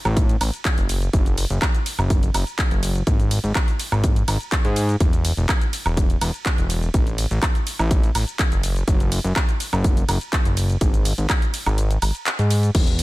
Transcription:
0.05 analog synth bass A1, closed hi-hat, high woodblock, shaker
0.17 kick, closed hi-hat, shaker
0.29 closed hi-hat, shaker
0.41 analog synth bass A1, open hi-hat, ride, high woodblock, shaker
0.54 closed hi-hat, shaker
0.65 kick, clap, closed hi-hat, shaker
0.78 analog synth bass F#1, closed hi-hat, shaker
0.89 open hi-hat, ride, shaker
1.02 closed hi-hat, shaker
1.13 analog synth bass F#1, kick, closed hi-hat, shaker
1.26 closed hi-hat, shaker
1.38 open hi-hat, ride, shaker
1.50 analog synth bass F#1, closed hi-hat, shaker
1.62 kick, clap, closed hi-hat, high woodblock, shaker
1.74 closed hi-hat, shaker
1.86 open hi-hat, ride, shaker
1.99 analog synth bass F#1, closed hi-hat, high woodblock, shaker
2.10 kick, closed hi-hat, shaker
2.23 closed hi-hat, shaker
2.34 analog synth bass F#1, open hi-hat, ride, high woodblock, shaker
2.47 closed hi-hat, shaker
2.59 kick, clap, closed hi-hat, shaker
2.71 analog synth bass F#1, closed hi-hat, shaker
2.83 open hi-hat, ride, shaker
2.95 closed hi-hat, shaker
3.07 analog synth bass G#1, kick, closed hi-hat, shaker
3.20 closed hi-hat, shaker
3.31 open hi-hat, ride, shaker
3.44 analog synth bass G#1, closed hi-hat, shaker
3.55 kick, clap, closed hi-hat, high woodblock, shaker
3.68 closed hi-hat, shaker
3.79 open hi-hat, ride, shaker
3.92 analog synth bass G#1, closed hi-hat, high woodblock, shaker
4.04 kick, closed hi-hat, shaker
4.16 closed hi-hat, shaker
4.28 analog synth bass G#1, open hi-hat, ride, high woodblock, shaker
4.41 closed hi-hat, shaker
4.52 kick, clap, closed hi-hat, shaker
4.65 analog synth bass G#2, closed hi-hat, shaker
4.76 open hi-hat, ride, shaker
4.89 closed hi-hat, shaker
5.00 analog synth bass E1, kick, closed hi-hat, shaker
5.13 closed hi-hat, shaker
5.25 open hi-hat, ride, shaker
5.37 analog synth bass E1, closed hi-hat, shaker
5.49 kick, clap, closed hi-hat, high woodblock, shaker
5.62 closed hi-hat, shaker
5.73 open hi-hat, ride, shaker
5.86 analog synth bass E1, closed hi-hat, high woodblock, shaker
5.97 kick, closed hi-hat, shaker
6.10 closed hi-hat, shaker
6.21 analog synth bass E1, open hi-hat, ride, high woodblock, shaker
6.34 closed hi-hat, shaker
6.46 kick, clap, closed hi-hat, shaker
6.58 analog synth bass E1, closed hi-hat, shaker
6.70 open hi-hat, ride, shaker
6.82 closed hi-hat, shaker
6.94 analog synth bass A1, kick, closed hi-hat, shaker
7.07 closed hi-hat, shaker
7.18 open hi-hat, ride, shaker
7.31 analog synth bass A1, closed hi-hat, shaker
7.42 kick, clap, closed hi-hat, high woodblock, shaker
7.55 closed hi-hat, shaker
7.67 open hi-hat, ride, shaker
7.79 analog synth bass A1, closed hi-hat, high woodblock, shaker
7.91 kick, closed hi-hat, shaker
8.04 closed hi-hat, shaker
8.15 analog synth bass A1, open hi-hat, ride, high woodblock, shaker
8.28 closed hi-hat, shaker
8.39 kick, clap, closed hi-hat, shaker
8.52 analog synth bass F#1, closed hi-hat, shaker
8.63 open hi-hat, ride, shaker
8.76 closed hi-hat, shaker
8.88 analog synth bass F#1, kick, closed hi-hat, shaker
9.00 closed hi-hat, shaker
9.12 open hi-hat, ride, shaker
9.24 analog synth bass F#1, closed hi-hat, shaker
9.36 kick, clap, closed hi-hat, high woodblock, shaker
9.49 closed hi-hat, shaker
9.60 open hi-hat, ride, shaker
9.73 analog synth bass F#1, closed hi-hat, high woodblock, shaker
9.84 kick, closed hi-hat, shaker
9.97 closed hi-hat, shaker
10.09 analog synth bass F#1, open hi-hat, ride, high woodblock, shaker
10.21 closed hi-hat, shaker
10.33 kick, clap, closed hi-hat, shaker
10.45 analog synth bass F#1, closed hi-hat, shaker
10.57 open hi-hat, ride, shaker
10.70 closed hi-hat, shaker
10.81 analog synth bass G#1, kick, closed hi-hat, shaker
10.94 closed hi-hat, shaker
11.05 open hi-hat, ride, shaker
11.18 analog synth bass G#1, closed hi-hat, shaker
11.30 kick, clap, closed hi-hat, high woodblock, shaker
11.42 closed hi-hat, shaker
11.54 open hi-hat, ride, shaker
11.66 analog synth bass G#1, closed hi-hat, high woodblock, shaker
11.78 closed hi-hat, shaker
11.91 closed hi-hat, shaker
12.02 analog synth bass G#1, open hi-hat, ride, high woodblock, shaker
12.15 closed hi-hat, shaker
12.26 clap, closed hi-hat, shaker
12.39 analog synth bass G#2, closed hi-hat, shaker
12.50 open hi-hat, ride, shaker
12.63 closed hi-hat, shaker
12.75 analog synth bass E1, kick, closed hi-hat, crash, shaker
12.87 closed hi-hat, shaker
12.99 open hi-hat, ride, shaker

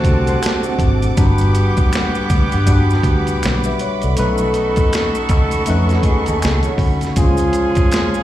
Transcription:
Already playing: horn section D3 C4 F#4, tine electric piano A3 D4 F#4 C5, string section A4 F#5 A5 D6
0.04 fingered electric bass C2, kick, closed hi-hat
0.27 clean electric guitar F#4 C5, closed hi-hat, maracas
0.43 clean electric guitar E4 A4, finger snap, snare, closed hi-hat, maracas
0.64 clean electric guitar C4 F#4, maracas
0.79 fingered electric bass G#1, kick, closed hi-hat
1.02 closed hi-hat, maracas
1.17 fingered electric bass G1, horn section D3 B3 G4, tine electric piano G3 D4 F#4 A#4, string section G3 B5, kick, closed hi-hat, maracas
1.27 tine electric piano B4
1.38 closed hi-hat, maracas
1.55 closed hi-hat, maracas
1.77 muted fingered electric bass stroke, kick, closed hi-hat, maracas
1.93 finger snap, snare, closed hi-hat, maracas
2.15 maracas
2.30 fingered electric bass D2, kick, closed hi-hat, maracas
2.52 fingered electric bass G2, closed hi-hat, maracas
2.67 tine electric piano G3 D4 F#4 B4, kick, closed hi-hat, maracas
2.90 snare, maracas
3.03 fingered electric bass D2, kick, closed hi-hat
3.27 closed hi-hat, maracas
3.43 fingered electric bass B1, finger snap, snare, closed hi-hat, maracas
3.64 tine electric piano B4 E5, maracas
3.79 tine electric piano C#5 F#5, closed hi-hat
4.02 fingered electric bass C2, tine electric piano A4 D5, closed hi-hat, maracas
4.16 fingered electric bass B1, tine electric piano A3 C#4 D#4 B4, horn section D#4 F#4 A4, string section A4 D#5 C#6, closed hi-hat, maracas
4.38 maracas
4.54 closed hi-hat, maracas
4.76 kick, closed hi-hat, maracas
4.93 finger snap, snare, closed hi-hat, maracas
5.15 maracas
5.29 fingered electric bass C#2, kick, closed hi-hat, maracas
5.51 closed hi-hat, maracas
5.66 fingered electric bass F2, tine electric piano A3 C#4 D#4 B4, closed hi-hat, maracas
5.89 clean electric guitar C#4 F#4, snare, closed hi-hat, maracas
6.03 clean electric guitar D#4 G#4, muted fingered electric bass stroke, kick, closed hi-hat
6.26 fingered electric bass D#2, clean electric guitar D#4 A4, closed hi-hat, maracas
6.42 fingered electric bass C#2, clean electric guitar D#4 G#4, finger snap, snare, closed hi-hat, maracas
6.63 clean electric guitar C#4 F#4, closed hi-hat, maracas
6.78 fingered electric bass D2, kick, open hi-hat
7.01 snare, closed hi-hat, maracas
7.16 fingered electric bass C#2, horn section F3 C#4 G#4, tine electric piano G#3 C#4 F4 C5, string section G#4 F5 G#5 C6, kick, closed hi-hat, maracas
7.37 closed hi-hat, maracas
7.53 closed hi-hat, maracas
7.75 muted fingered electric bass stroke, kick, closed hi-hat, maracas
7.91 finger snap, snare, closed hi-hat, maracas
8.14 maracas

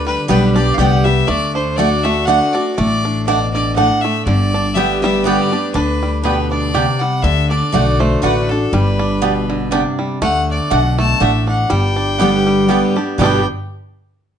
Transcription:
Already playing: upright bass D2, steel-string acoustic guitar D3, five-string banjo D4 G4
0.06 five-string banjo G3, fiddle B4
0.28 upright bass B1, steel-string acoustic guitar D3 G3 B3 G4, mandolin B3 G4 D5 G5, five-string banjo B3, fiddle B4
0.55 steel-string acoustic guitar B3 G4, five-string banjo D4, fiddle D5
0.74 upright bass C2, five-string banjo G4, fiddle F5 F#5
0.79 steel-string acoustic guitar D3 G3 B3 G4, mandolin B3 G4 D5 G5
1.04 five-string banjo G3, steel-string acoustic guitar B3 G4, fiddle E5
1.27 upright bass D2, steel-string acoustic guitar D3, five-string banjo A3, fiddle D5
1.55 five-string banjo D4, fiddle C5
1.76 steel-string acoustic guitar D3 A3 D4 F#4, mandolin A3 F#4 D5 F#5, five-string banjo D4, fiddle D5
2.03 five-string banjo A3, steel-string acoustic guitar D4 F#4, fiddle E5
2.25 steel-string acoustic guitar D3 A3 D4, mandolin A3 F#4 D5, five-string banjo D4, fiddle F#5
2.29 steel-string acoustic guitar F#4, mandolin F#5
2.53 five-string banjo D4, steel-string acoustic guitar F#4, fiddle D5
2.57 steel-string acoustic guitar D4
2.75 upright bass A1, steel-string acoustic guitar A2, five-string banjo A3, fiddle D5
3.05 five-string banjo D4
3.26 steel-string acoustic guitar B2, mandolin A3 F#4 D5 F#5, five-string banjo D4, fiddle D5
3.53 five-string banjo D3, fiddle D5
3.75 steel-string acoustic guitar A2, mandolin A3 F#4 D5 F#5, five-string banjo D4, fiddle F#5
4.02 five-string banjo A3, fiddle E5
4.25 upright bass G1, steel-string acoustic guitar G2, five-string banjo D3, fiddle D5
4.54 five-string banjo D4
4.74 steel-string acoustic guitar D3 G3 B3 G4, mandolin B3 G4 D5 G5, five-string banjo B3, fiddle E5
5.01 five-string banjo G3, steel-string acoustic guitar B3 G4, fiddle E5
5.24 steel-string acoustic guitar D3 G3 B3 G4, mandolin B3 G4 D5 G5, five-string banjo B3, fiddle D5
5.51 steel-string acoustic guitar B3 G4, five-string banjo D4
5.74 upright bass D2, steel-string acoustic guitar D3, five-string banjo D4, fiddle B4
6.03 five-string banjo G3
6.23 steel-string acoustic guitar B2, mandolin B3 G4 D5 G5, five-string banjo B3, fiddle B4
6.51 five-string banjo D4, fiddle D5
6.74 steel-string acoustic guitar C3, mandolin B3 G4 D5 G5, five-string banjo G4
6.99 five-string banjo G3, fiddle F#5
7.22 upright bass D2, five-string banjo D3, steel-string acoustic guitar D3, fiddle E5
7.49 five-string banjo D4, fiddle D5
7.72 upright bass B1, steel-string acoustic guitar D3 A3 D4 F#4, mandolin A3 F#4 D5 F#5, five-string banjo D4
7.99 five-string banjo A3, fiddle C5
8.22 upright bass A1, steel-string acoustic guitar D3 A3 D4 F#4, mandolin A3 F#4 D5 F#5, five-string banjo D4, fiddle B4
8.49 five-string banjo D4, steel-string acoustic guitar D4 F#4, fiddle A4
8.72 upright bass G1, steel-string acoustic guitar G2, five-string banjo G3, fiddle B4
8.99 five-string banjo D4
9.22 steel-string acoustic guitar B2, mandolin B3 G4 D5 G5, five-string banjo B3
9.50 five-string banjo D3
9.71 steel-string acoustic guitar C3, mandolin B3 G4 D5 G5, five-string banjo D4
9.99 five-string banjo G3
10.22 upright bass D2, steel-string acoustic guitar D3, five-string banjo A3, fiddle F#5
10.51 fiddle D5
10.70 upright bass B1, steel-string acoustic guitar B2, mandolin A3 F#4 D5 F#5, five-string banjo D4, fiddle F#5
10.99 five-string banjo A3, fiddle A5
11.20 upright bass A1, steel-string acoustic guitar A2, mandolin A3 F#4 D5 F#5, five-string banjo D4, fiddle E5
11.47 five-string banjo D4, fiddle F#5
11.70 upright bass G1, steel-string acoustic guitar G2, five-string banjo G3, fiddle G5
11.96 five-string banjo D4
12.18 steel-string acoustic guitar D3 G3 B3 G4, mandolin B3 G4 D5 G5, five-string banjo B3
12.47 five-string banjo G3
12.68 steel-string acoustic guitar D3 G3 B3 G4, mandolin B3 G4 D5 G5, five-string banjo B3
12.96 steel-string acoustic guitar B3 G4, five-string banjo D4
13.18 upright bass G1, steel-string acoustic guitar G2 B2 D3 G3 B3 G4, five-string banjo G3 B3, mandolin B3 G4 D5 G5, fiddle G5
13.24 five-string banjo D4 G4

